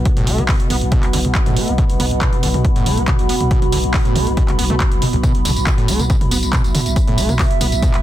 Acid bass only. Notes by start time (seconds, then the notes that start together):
0.17 A2
0.27 A3
0.38 B3
0.49 B2
0.70 B3
0.92 B2
1.13 D3
1.46 A2
1.57 A3
1.68 B3
1.78 B2
2.00 B3
2.21 B2
2.43 D3
2.76 A2
2.86 A3
2.98 B3
3.08 B2
3.29 B3
3.51 B2
3.72 D3
4.05 A2
4.15 A3
4.27 B3
4.37 B2
4.59 B3
4.70 A3
4.80 B2
5.02 B2
5.13 B1
5.23 B2
5.45 D3
5.78 A2
5.88 A3
6.00 B3
6.10 B2
6.31 B3
6.53 B2
6.75 D3
7.07 A2
7.18 A3
7.29 B3
7.39 B2
7.61 B3
7.82 B2